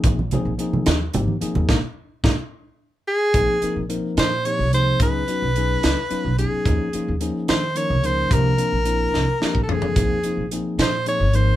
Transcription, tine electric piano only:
\new Staff \with { instrumentName = "Tine electric piano" } { \time 6/8 \key ees \mixolydian \tempo 4. = 73 <f bes c' ees' aes'>16 r16 <f bes c' ees' aes'>8 <f bes c' ees' aes'>8. r16 <f bes c' ees' g'>8 <f bes c' ees' aes'>8 | <aes bes ees'>8 r8 <aes bes ees'>8 r4. | <f bes c' ees' aes'>8 <f bes c' ees' bes'>8 <f bes c' ees' bes'>8. r16 <f bes c' ees' g'>8 <f bes c' ees' aes'>8 | <ges ces' des' ees' aes'>8 <ges ces' des' ees' ges'>8 <ges ces' des' ees' aes'>8. r16 <ges ces' des' ees' f'>8 <ges ces' des' ees' aes'>8 |
<f bes des' ees' aes'>8 <f bes des' ees' f'>8 <f bes des' ees' aes'>8. r16 <f bes des' ees' bes'>8 <f bes des' ees' bes'>8 | <f bes c' d' g'>8 <f bes c' d' f'>8 <f bes c' d' e'>8. r16 <f bes c' d' g'>8 <f bes c' d' a'>8 | <f bes c' ees' aes'>8 <f bes c' ees' f'>8 <f bes c' ees' aes'>8. r16 <f bes c' ees' aes'>8 <f bes c' ees' bes'>8 | }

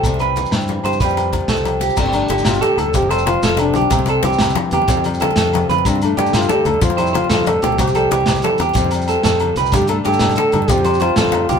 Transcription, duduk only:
\new Staff \with { instrumentName = "Duduk" } { \time 12/8 \key f \lydian \tempo 4. = 124 r1. | c'8 d'8 d'8 f'8 g'8 a'8 g'8 a'8 f'4 d'4 | c'2. r2. | c'8 d'8 d'8 f'8 g'8 a'8 f'8 e'8 f'4 a'4 |
g'2. r2. | g'8 a'8 a'2 g'4 f'2 | }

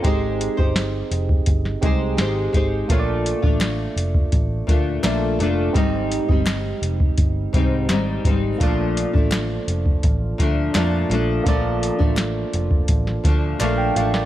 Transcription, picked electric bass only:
\new Staff \with { instrumentName = "Picked electric bass" } { \clef bass \time 4/4 \key bes \major \tempo 4 = 84 aes,,8. g,,8. f,,8 g,,8 c,8 aes,,8 aes,,8 | bes,,8. a,,8. f,,8 a,,8 d,8 bes,,8 f,,8 | aes,,8. g,,8. f,,8 g,,8 c,8 aes,,8 aes,,8 | bes,,8. a,,8. f,,8 a,,8 d,8 f,8 bes,,8 |
bes,,8. a,,8. f,,8 a,,8 d,8 bes,,8 a,,8 | }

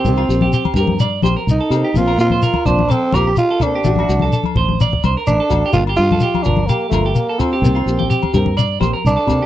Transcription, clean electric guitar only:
\new Staff \with { instrumentName = "Clean electric guitar" } { \time 4/4 \key c \dorian \tempo 4 = 127 g'16 f'8 g'16 g'8 bes'8 d''8 c''16 bes'8 a'8 g'16 | r16 bes'8 c''16 bes'8 c''8 a'8 bes'16 g'8 a'8 g'16~ | g'16 fis'8 a'16 a'8 c''8 d''8 c''16 bes'8 a'8 g'16 | r16 g'8 a'16 g'8 bes'8 g'8 bes'16 g'8 a'8 g'16~ |
g'16 f'8 g'16 g'8 bes'8 d''8 c''16 bes'8 a'8 g'16 | }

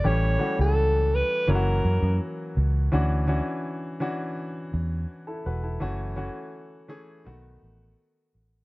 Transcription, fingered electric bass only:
\new Staff \with { instrumentName = "Fingered electric bass" } { \clef bass \time 4/4 \key d \major \tempo 4 = 83 a,,8 r16 cis,4 r16 fis,,8 fis,16 fis,16 r8 cis,8 | d,8. r4. r16 e,8 r8 e,,8 | fis,,8. r4 r16 b,,8 a,,8 r8 a,,8 | }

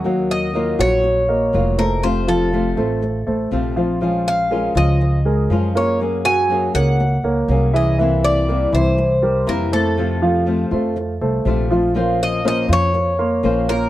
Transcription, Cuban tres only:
\new Staff \with { instrumentName = "Cuban tres" } { \time 4/4 \key bes \minor \tempo 4 = 121 r8 ees''4 des''2 bes'8 | c''8 a'2. r8 | r8 f''4 ees''2 des''8 | r8 aes''4 ges''2 ees''8 |
r8 d''4 c''4. bes'8 a'8~ | a'2. r4 | r8 ees''8 ees''8 des''2 bes'8 | }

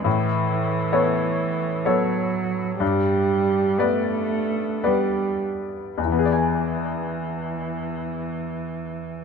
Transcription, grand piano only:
\new Staff \with { instrumentName = "Grand piano" } { \time 3/4 \key g \lydian \tempo 4 = 57 a,4 <b a' cis''>4 <b a' cis''>4 | g,4 <b b' d''>4 <b b' d''>4 | <e, e b gis' d'' gis''>2. | }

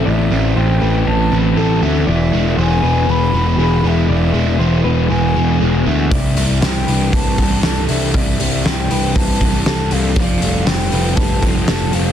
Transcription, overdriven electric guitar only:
\new Staff \with { instrumentName = "Overdriven electric guitar" } { \clef bass \time 4/4 \key e \phrygian \tempo 4 = 119 <a, e c'>8 c'4 e4 e8 c'8 b8 | e,8 gis8 b8 e8 b8 e8 gis8 b8 | e,8 gis8 b8 e8 b8 e8 gis8 b8 | c8 g8 d'8 e8 d'8 e8 g8 d'8 |
c8 g8 d'8 e8 d'8 e8 g8 d'8 | f8 a8 c'8 f8 c'8 f8 a8 c'8 | }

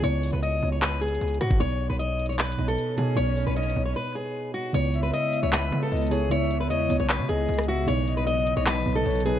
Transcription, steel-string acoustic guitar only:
\new Staff \with { instrumentName = "Steel-string acoustic guitar" } { \time 4/4 \key cis \minor \tempo 4 = 153 cis''8. b'16 dis''8. cis''16 b'8 gis'4 fis'8 | cis''8. b'16 dis''8. cis''16 b'8. a'8. gis'8 | cis''8. b'16 dis''8. cis''16 b'8 gis'4 fis'8 | cis''8. b'16 dis''8. cis''16 b'8. a'8. gis'8 |
cis''8. b'16 dis''8. cis''16 b'8 gis'4 fis'8 | cis''8. b'16 dis''8. cis''16 b'8. a'8. gis'8 | }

